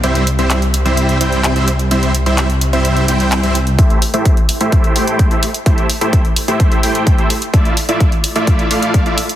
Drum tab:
HH |xxxxxxxxxxxxxxxx|xxxxxxxxxxxxxxxx|xxoxxxoxxxoxxxox|xxoxxxoxxxoxxxox|
CP |----x-------x---|----x-------x---|----------------|----------------|
BD |----------------|----------------|o---o---o---o---|o---o---o---o---|

HH |xxoxxxoxxxoxxxox|
CP |----------------|
BD |o---o---o---o---|